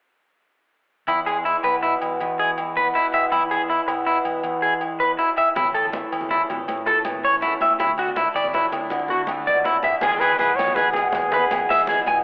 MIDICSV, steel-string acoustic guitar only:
0, 0, Header, 1, 3, 480
1, 0, Start_track
1, 0, Tempo, 372439
1, 1401, Time_signature, 12, 3, 24, 8
1, 15772, End_track
2, 0, Start_track
2, 0, Title_t, "Steel-string acoustic guitar"
2, 0, Program_c, 0, 25
2, 1402, Note_on_c, 0, 40, 68
2, 1650, Note_on_c, 0, 56, 47
2, 1878, Note_on_c, 0, 52, 53
2, 2129, Note_on_c, 0, 59, 49
2, 2366, Note_on_c, 0, 47, 53
2, 2613, Note_off_c, 0, 56, 0
2, 2618, Note_on_c, 0, 56, 46
2, 2844, Note_off_c, 0, 40, 0
2, 2849, Note_on_c, 0, 40, 68
2, 3070, Note_off_c, 0, 56, 0
2, 3086, Note_on_c, 0, 56, 50
2, 3315, Note_off_c, 0, 52, 0
2, 3320, Note_on_c, 0, 52, 54
2, 3326, Note_off_c, 0, 47, 0
2, 3553, Note_off_c, 0, 59, 0
2, 3569, Note_on_c, 0, 59, 54
2, 3801, Note_on_c, 0, 47, 61
2, 4031, Note_off_c, 0, 56, 0
2, 4046, Note_on_c, 0, 56, 46
2, 4255, Note_off_c, 0, 47, 0
2, 4258, Note_off_c, 0, 56, 0
2, 4272, Note_off_c, 0, 40, 0
2, 4288, Note_on_c, 0, 40, 66
2, 4552, Note_on_c, 0, 56, 45
2, 4767, Note_off_c, 0, 52, 0
2, 4772, Note_on_c, 0, 52, 48
2, 5006, Note_off_c, 0, 59, 0
2, 5021, Note_on_c, 0, 59, 51
2, 5249, Note_on_c, 0, 47, 49
2, 5487, Note_off_c, 0, 56, 0
2, 5502, Note_on_c, 0, 56, 45
2, 5707, Note_off_c, 0, 40, 0
2, 5723, Note_on_c, 0, 40, 70
2, 5959, Note_off_c, 0, 56, 0
2, 5975, Note_on_c, 0, 56, 51
2, 6207, Note_off_c, 0, 52, 0
2, 6210, Note_off_c, 0, 47, 0
2, 6213, Note_on_c, 0, 52, 53
2, 6436, Note_off_c, 0, 40, 0
2, 6452, Note_on_c, 0, 40, 51
2, 6678, Note_off_c, 0, 40, 0
2, 6684, Note_on_c, 0, 42, 64
2, 6925, Note_off_c, 0, 42, 0
2, 6931, Note_on_c, 0, 44, 50
2, 7145, Note_off_c, 0, 56, 0
2, 7171, Note_off_c, 0, 44, 0
2, 7178, Note_off_c, 0, 59, 0
2, 7182, Note_on_c, 0, 45, 73
2, 7411, Note_on_c, 0, 57, 49
2, 7641, Note_off_c, 0, 52, 0
2, 7647, Note_on_c, 0, 52, 51
2, 7897, Note_on_c, 0, 61, 50
2, 8130, Note_on_c, 0, 40, 59
2, 8137, Note_off_c, 0, 45, 0
2, 8379, Note_off_c, 0, 57, 0
2, 8384, Note_on_c, 0, 57, 50
2, 8611, Note_off_c, 0, 40, 0
2, 8621, Note_on_c, 0, 45, 71
2, 8845, Note_off_c, 0, 57, 0
2, 8860, Note_on_c, 0, 57, 48
2, 9086, Note_off_c, 0, 52, 0
2, 9092, Note_on_c, 0, 52, 58
2, 9325, Note_off_c, 0, 61, 0
2, 9341, Note_on_c, 0, 61, 52
2, 9567, Note_on_c, 0, 40, 59
2, 9577, Note_off_c, 0, 45, 0
2, 9804, Note_off_c, 0, 57, 0
2, 9820, Note_on_c, 0, 57, 43
2, 10028, Note_off_c, 0, 57, 0
2, 10028, Note_off_c, 0, 61, 0
2, 10046, Note_off_c, 0, 52, 0
2, 10050, Note_off_c, 0, 40, 0
2, 10297, Note_on_c, 0, 62, 51
2, 10528, Note_on_c, 0, 57, 58
2, 10780, Note_on_c, 0, 64, 61
2, 11016, Note_on_c, 0, 45, 55
2, 11249, Note_off_c, 0, 62, 0
2, 11265, Note_on_c, 0, 62, 49
2, 11484, Note_on_c, 0, 50, 69
2, 11494, Note_off_c, 0, 45, 0
2, 11725, Note_off_c, 0, 62, 0
2, 11740, Note_on_c, 0, 62, 53
2, 11953, Note_off_c, 0, 57, 0
2, 11969, Note_on_c, 0, 57, 55
2, 12209, Note_on_c, 0, 47, 56
2, 12449, Note_off_c, 0, 47, 0
2, 12454, Note_on_c, 0, 49, 52
2, 12668, Note_off_c, 0, 50, 0
2, 12683, Note_on_c, 0, 50, 54
2, 12692, Note_off_c, 0, 49, 0
2, 12899, Note_off_c, 0, 57, 0
2, 12905, Note_off_c, 0, 62, 0
2, 12926, Note_off_c, 0, 50, 0
2, 12926, Note_on_c, 0, 40, 80
2, 12939, Note_on_c, 0, 56, 57
2, 13173, Note_off_c, 0, 64, 0
2, 13178, Note_on_c, 0, 68, 60
2, 13396, Note_on_c, 0, 52, 61
2, 13406, Note_on_c, 0, 59, 53
2, 13892, Note_on_c, 0, 47, 59
2, 13896, Note_off_c, 0, 68, 0
2, 13901, Note_on_c, 0, 68, 61
2, 14131, Note_off_c, 0, 59, 0
2, 14136, Note_on_c, 0, 59, 50
2, 14359, Note_off_c, 0, 40, 0
2, 14364, Note_on_c, 0, 40, 81
2, 14365, Note_off_c, 0, 56, 0
2, 14371, Note_on_c, 0, 56, 64
2, 14596, Note_off_c, 0, 59, 0
2, 14611, Note_on_c, 0, 59, 53
2, 14842, Note_off_c, 0, 52, 0
2, 14842, Note_off_c, 0, 59, 0
2, 14846, Note_off_c, 0, 47, 0
2, 14848, Note_on_c, 0, 52, 64
2, 14858, Note_on_c, 0, 59, 58
2, 15328, Note_off_c, 0, 59, 0
2, 15342, Note_on_c, 0, 47, 66
2, 15354, Note_on_c, 0, 59, 46
2, 15566, Note_off_c, 0, 59, 0
2, 15581, Note_on_c, 0, 59, 49
2, 15772, Note_off_c, 0, 40, 0
2, 15772, Note_off_c, 0, 47, 0
2, 15772, Note_off_c, 0, 52, 0
2, 15772, Note_off_c, 0, 56, 0
2, 15772, Note_off_c, 0, 59, 0
2, 15772, Note_off_c, 0, 68, 0
2, 15772, End_track
3, 0, Start_track
3, 0, Title_t, "Muted steel-string acoustic guitar strokes"
3, 10051, Note_on_c, 9, 29, 73
3, 10180, Note_off_c, 9, 29, 0
3, 15772, End_track
0, 0, End_of_file